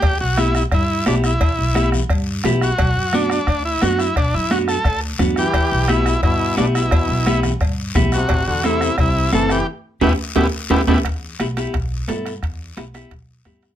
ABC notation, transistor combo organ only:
X:1
M:4/4
L:1/8
Q:1/4=174
K:Em
V:1 name="Transistor combo organ"
G F E E E2 D E- | E3 z4 F- | F2 D D2 E F E | D E F A2 z2 G- |
G2 E2 E2 D E- | E3 z4 F- | F F E2 E2 A G | z2 [B,EG] z [B,EG] z [B,EG] [B,EG] |
z8 | z8 |]